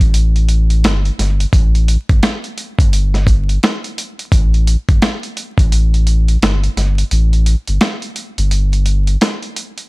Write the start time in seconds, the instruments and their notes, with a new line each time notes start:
0.00 sub bass A1, closed hi-hat
0.14 closed hi-hat
0.36 closed hi-hat
0.49 closed hi-hat
0.70 closed hi-hat
0.84 sub bass G1, snare, closed hi-hat
1.05 closed hi-hat
1.19 sub bass G1, snare, closed hi-hat
1.40 closed hi-hat
1.53 sub bass A1, kick, closed hi-hat
1.75 closed hi-hat
1.88 closed hi-hat
2.09 sub bass G1, kick, closed hi-hat
2.23 snare, closed hi-hat
2.44 closed hi-hat
2.58 closed hi-hat
2.79 sub bass G1, kick, closed hi-hat
2.93 closed hi-hat
3.14 snare, closed hi-hat
3.27 kick, closed hi-hat
3.49 closed hi-hat
3.63 snare, closed hi-hat
3.84 closed hi-hat
3.98 closed hi-hat
4.19 closed hi-hat
4.32 sub bass A1, kick, closed hi-hat
4.54 closed hi-hat
4.67 closed hi-hat
4.89 sub bass G1, kick, closed hi-hat
5.02 snare, closed hi-hat
5.23 closed hi-hat
5.37 closed hi-hat
5.58 sub bass A1, kick, closed hi-hat
5.72 closed hi-hat
5.94 closed hi-hat
6.07 closed hi-hat
6.28 closed hi-hat
6.42 sub bass G1, snare, closed hi-hat
6.63 closed hi-hat
6.76 sub bass G1, snare, closed hi-hat
6.98 closed hi-hat
7.11 sub bass A1, closed hi-hat
7.33 closed hi-hat
7.46 closed hi-hat
7.68 sub bass G1, closed hi-hat
7.81 snare, closed hi-hat
8.02 closed hi-hat
8.16 closed hi-hat
8.38 sub bass G1, closed hi-hat
8.51 closed hi-hat
8.73 closed hi-hat
8.86 closed hi-hat
9.07 closed hi-hat
9.21 snare, closed hi-hat
9.43 closed hi-hat
9.56 closed hi-hat
9.78 closed hi-hat